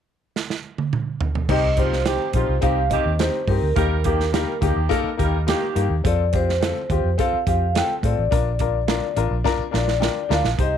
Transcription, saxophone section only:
0, 0, Header, 1, 2, 480
1, 0, Start_track
1, 0, Tempo, 568720
1, 1259, Time_signature, 4, 2, 24, 8
1, 9096, End_track
2, 0, Start_track
2, 0, Title_t, "Saxophone section"
2, 0, Program_c, 0, 65
2, 1264, Note_on_c, 0, 51, 86
2, 1264, Note_on_c, 0, 60, 89
2, 1264, Note_on_c, 0, 67, 100
2, 1454, Note_off_c, 0, 51, 0
2, 1454, Note_off_c, 0, 60, 0
2, 1454, Note_off_c, 0, 67, 0
2, 1502, Note_on_c, 0, 62, 72
2, 1507, Note_on_c, 0, 53, 76
2, 1507, Note_on_c, 0, 65, 82
2, 1693, Note_off_c, 0, 62, 0
2, 1696, Note_off_c, 0, 53, 0
2, 1696, Note_off_c, 0, 65, 0
2, 1737, Note_on_c, 0, 51, 77
2, 1738, Note_on_c, 0, 60, 83
2, 1739, Note_on_c, 0, 67, 94
2, 1930, Note_off_c, 0, 51, 0
2, 1930, Note_off_c, 0, 60, 0
2, 1931, Note_off_c, 0, 67, 0
2, 1982, Note_on_c, 0, 53, 70
2, 1983, Note_on_c, 0, 65, 83
2, 1984, Note_on_c, 0, 62, 72
2, 2173, Note_off_c, 0, 53, 0
2, 2173, Note_off_c, 0, 65, 0
2, 2174, Note_off_c, 0, 62, 0
2, 2227, Note_on_c, 0, 60, 80
2, 2227, Note_on_c, 0, 67, 89
2, 2230, Note_on_c, 0, 51, 71
2, 2415, Note_off_c, 0, 60, 0
2, 2416, Note_off_c, 0, 67, 0
2, 2418, Note_off_c, 0, 51, 0
2, 2468, Note_on_c, 0, 60, 96
2, 2469, Note_on_c, 0, 67, 101
2, 2472, Note_on_c, 0, 51, 96
2, 2656, Note_off_c, 0, 60, 0
2, 2656, Note_off_c, 0, 67, 0
2, 2658, Note_off_c, 0, 51, 0
2, 3177, Note_on_c, 0, 70, 114
2, 3183, Note_on_c, 0, 55, 94
2, 3185, Note_on_c, 0, 63, 99
2, 3370, Note_off_c, 0, 70, 0
2, 3373, Note_off_c, 0, 55, 0
2, 3374, Note_off_c, 0, 63, 0
2, 3413, Note_on_c, 0, 58, 77
2, 3415, Note_on_c, 0, 67, 92
2, 3416, Note_on_c, 0, 51, 92
2, 3607, Note_off_c, 0, 58, 0
2, 3608, Note_off_c, 0, 67, 0
2, 3609, Note_off_c, 0, 51, 0
2, 3655, Note_on_c, 0, 55, 79
2, 3659, Note_on_c, 0, 63, 78
2, 3659, Note_on_c, 0, 70, 87
2, 3849, Note_off_c, 0, 55, 0
2, 3851, Note_off_c, 0, 63, 0
2, 3851, Note_off_c, 0, 70, 0
2, 3912, Note_on_c, 0, 67, 86
2, 3915, Note_on_c, 0, 51, 75
2, 3918, Note_on_c, 0, 58, 70
2, 4098, Note_off_c, 0, 67, 0
2, 4100, Note_off_c, 0, 51, 0
2, 4102, Note_off_c, 0, 58, 0
2, 4139, Note_on_c, 0, 63, 84
2, 4140, Note_on_c, 0, 55, 76
2, 4141, Note_on_c, 0, 70, 91
2, 4331, Note_off_c, 0, 55, 0
2, 4331, Note_off_c, 0, 63, 0
2, 4332, Note_off_c, 0, 70, 0
2, 4382, Note_on_c, 0, 70, 91
2, 4385, Note_on_c, 0, 55, 83
2, 4386, Note_on_c, 0, 63, 84
2, 4573, Note_off_c, 0, 70, 0
2, 4575, Note_off_c, 0, 55, 0
2, 4575, Note_off_c, 0, 63, 0
2, 4631, Note_on_c, 0, 58, 95
2, 4633, Note_on_c, 0, 51, 91
2, 4635, Note_on_c, 0, 67, 107
2, 4963, Note_off_c, 0, 58, 0
2, 4965, Note_off_c, 0, 51, 0
2, 4966, Note_off_c, 0, 67, 0
2, 9096, End_track
0, 0, End_of_file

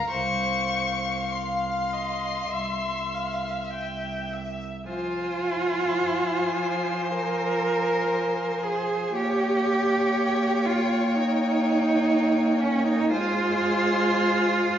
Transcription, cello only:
0, 0, Header, 1, 2, 480
1, 0, Start_track
1, 0, Key_signature, -4, "minor"
1, 0, Tempo, 1204819
1, 45, Time_signature, 4, 2, 24, 8
1, 1485, Tempo, 1160542
1, 1965, Tempo, 1075269
1, 2445, Tempo, 1140684
1, 2925, Tempo, 1018676
1, 4365, Tempo, 990099
1, 6607, End_track
2, 0, Start_track
2, 0, Title_t, "Cello"
2, 0, Program_c, 0, 42
2, 50, Note_on_c, 0, 36, 58
2, 996, Note_off_c, 0, 36, 0
2, 1013, Note_on_c, 0, 36, 51
2, 1863, Note_off_c, 0, 36, 0
2, 1971, Note_on_c, 0, 65, 91
2, 2926, Note_on_c, 0, 70, 84
2, 2933, Note_off_c, 0, 65, 0
2, 3648, Note_on_c, 0, 68, 78
2, 3655, Note_off_c, 0, 70, 0
2, 3889, Note_off_c, 0, 68, 0
2, 3891, Note_on_c, 0, 67, 101
2, 4606, Note_on_c, 0, 65, 88
2, 4613, Note_off_c, 0, 67, 0
2, 4848, Note_on_c, 0, 63, 91
2, 4855, Note_off_c, 0, 65, 0
2, 5552, Note_on_c, 0, 61, 94
2, 5559, Note_off_c, 0, 63, 0
2, 5674, Note_off_c, 0, 61, 0
2, 5676, Note_on_c, 0, 63, 99
2, 5794, Note_off_c, 0, 63, 0
2, 5801, Note_on_c, 0, 65, 118
2, 6607, Note_off_c, 0, 65, 0
2, 6607, End_track
0, 0, End_of_file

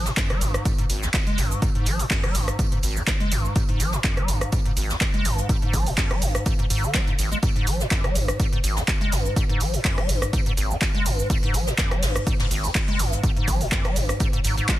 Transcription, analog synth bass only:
0, 0, Header, 1, 2, 480
1, 0, Start_track
1, 0, Tempo, 483871
1, 1609, Time_signature, 4, 2, 24, 8
1, 14676, End_track
2, 0, Start_track
2, 0, Title_t, "Analog synth bass"
2, 0, Program_c, 0, 38
2, 409, Note_on_c, 0, 32, 94
2, 563, Note_off_c, 0, 32, 0
2, 889, Note_on_c, 0, 32, 101
2, 1043, Note_off_c, 0, 32, 0
2, 1369, Note_on_c, 0, 32, 75
2, 1523, Note_off_c, 0, 32, 0
2, 1849, Note_on_c, 0, 32, 108
2, 2003, Note_off_c, 0, 32, 0
2, 2329, Note_on_c, 0, 32, 91
2, 2482, Note_off_c, 0, 32, 0
2, 2808, Note_on_c, 0, 32, 105
2, 2962, Note_off_c, 0, 32, 0
2, 3288, Note_on_c, 0, 32, 78
2, 3442, Note_off_c, 0, 32, 0
2, 3769, Note_on_c, 0, 32, 111
2, 3923, Note_off_c, 0, 32, 0
2, 4249, Note_on_c, 0, 32, 94
2, 4403, Note_off_c, 0, 32, 0
2, 4729, Note_on_c, 0, 32, 101
2, 4883, Note_off_c, 0, 32, 0
2, 5209, Note_on_c, 0, 32, 78
2, 5362, Note_off_c, 0, 32, 0
2, 5689, Note_on_c, 0, 32, 114
2, 5842, Note_off_c, 0, 32, 0
2, 6169, Note_on_c, 0, 32, 90
2, 6323, Note_off_c, 0, 32, 0
2, 6649, Note_on_c, 0, 32, 86
2, 6803, Note_off_c, 0, 32, 0
2, 7129, Note_on_c, 0, 32, 84
2, 7283, Note_off_c, 0, 32, 0
2, 7609, Note_on_c, 0, 32, 105
2, 7763, Note_off_c, 0, 32, 0
2, 8089, Note_on_c, 0, 32, 96
2, 8243, Note_off_c, 0, 32, 0
2, 8569, Note_on_c, 0, 32, 102
2, 8723, Note_off_c, 0, 32, 0
2, 9049, Note_on_c, 0, 32, 80
2, 9203, Note_off_c, 0, 32, 0
2, 9529, Note_on_c, 0, 32, 110
2, 9683, Note_off_c, 0, 32, 0
2, 10010, Note_on_c, 0, 32, 99
2, 10163, Note_off_c, 0, 32, 0
2, 10489, Note_on_c, 0, 32, 99
2, 10643, Note_off_c, 0, 32, 0
2, 10969, Note_on_c, 0, 32, 80
2, 11123, Note_off_c, 0, 32, 0
2, 11449, Note_on_c, 0, 32, 106
2, 11603, Note_off_c, 0, 32, 0
2, 11929, Note_on_c, 0, 32, 97
2, 12083, Note_off_c, 0, 32, 0
2, 12409, Note_on_c, 0, 32, 110
2, 12563, Note_off_c, 0, 32, 0
2, 12889, Note_on_c, 0, 32, 80
2, 13043, Note_off_c, 0, 32, 0
2, 13369, Note_on_c, 0, 32, 105
2, 13523, Note_off_c, 0, 32, 0
2, 13849, Note_on_c, 0, 32, 94
2, 14003, Note_off_c, 0, 32, 0
2, 14329, Note_on_c, 0, 32, 94
2, 14483, Note_off_c, 0, 32, 0
2, 14676, End_track
0, 0, End_of_file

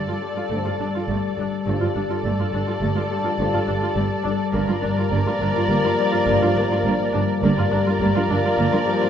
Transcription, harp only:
0, 0, Header, 1, 2, 480
1, 0, Start_track
1, 0, Key_signature, -2, "minor"
1, 0, Tempo, 576923
1, 1380, Time_signature, 5, 2, 24, 8
1, 7567, End_track
2, 0, Start_track
2, 0, Title_t, "Harp"
2, 0, Program_c, 0, 46
2, 0, Note_on_c, 0, 43, 45
2, 0, Note_on_c, 0, 55, 37
2, 169, Note_off_c, 0, 43, 0
2, 179, Note_on_c, 0, 43, 65
2, 410, Note_off_c, 0, 55, 0
2, 419, Note_on_c, 0, 55, 45
2, 648, Note_off_c, 0, 43, 0
2, 658, Note_on_c, 0, 43, 44
2, 889, Note_off_c, 0, 55, 0
2, 899, Note_on_c, 0, 55, 47
2, 1125, Note_off_c, 0, 55, 0
2, 1135, Note_on_c, 0, 55, 50
2, 1366, Note_off_c, 0, 43, 0
2, 1376, Note_on_c, 0, 43, 66
2, 1602, Note_off_c, 0, 55, 0
2, 1612, Note_on_c, 0, 55, 45
2, 1846, Note_off_c, 0, 43, 0
2, 1856, Note_on_c, 0, 43, 47
2, 2093, Note_off_c, 0, 43, 0
2, 2103, Note_on_c, 0, 43, 47
2, 2327, Note_off_c, 0, 43, 0
2, 2337, Note_on_c, 0, 43, 53
2, 2570, Note_off_c, 0, 43, 0
2, 2580, Note_on_c, 0, 43, 74
2, 2807, Note_off_c, 0, 55, 0
2, 2817, Note_on_c, 0, 55, 54
2, 3046, Note_off_c, 0, 43, 0
2, 3056, Note_on_c, 0, 43, 53
2, 3288, Note_off_c, 0, 55, 0
2, 3298, Note_on_c, 0, 55, 58
2, 3527, Note_off_c, 0, 55, 0
2, 3537, Note_on_c, 0, 55, 61
2, 3767, Note_off_c, 0, 43, 0
2, 3777, Note_on_c, 0, 43, 77
2, 4002, Note_off_c, 0, 55, 0
2, 4012, Note_on_c, 0, 55, 61
2, 4247, Note_off_c, 0, 43, 0
2, 4257, Note_on_c, 0, 43, 54
2, 4483, Note_off_c, 0, 43, 0
2, 4493, Note_on_c, 0, 43, 60
2, 4721, Note_off_c, 0, 43, 0
2, 4731, Note_on_c, 0, 43, 56
2, 4966, Note_off_c, 0, 43, 0
2, 4976, Note_on_c, 0, 43, 89
2, 5205, Note_off_c, 0, 55, 0
2, 5215, Note_on_c, 0, 55, 67
2, 5441, Note_off_c, 0, 43, 0
2, 5451, Note_on_c, 0, 43, 69
2, 5682, Note_off_c, 0, 55, 0
2, 5692, Note_on_c, 0, 55, 60
2, 5930, Note_off_c, 0, 55, 0
2, 5940, Note_on_c, 0, 55, 68
2, 6168, Note_off_c, 0, 43, 0
2, 6178, Note_on_c, 0, 43, 85
2, 6409, Note_off_c, 0, 55, 0
2, 6419, Note_on_c, 0, 55, 62
2, 6649, Note_off_c, 0, 43, 0
2, 6659, Note_on_c, 0, 43, 59
2, 6884, Note_off_c, 0, 43, 0
2, 6894, Note_on_c, 0, 43, 65
2, 7118, Note_off_c, 0, 43, 0
2, 7128, Note_on_c, 0, 43, 62
2, 7360, Note_off_c, 0, 43, 0
2, 7370, Note_on_c, 0, 43, 91
2, 7567, Note_off_c, 0, 43, 0
2, 7567, Note_off_c, 0, 55, 0
2, 7567, End_track
0, 0, End_of_file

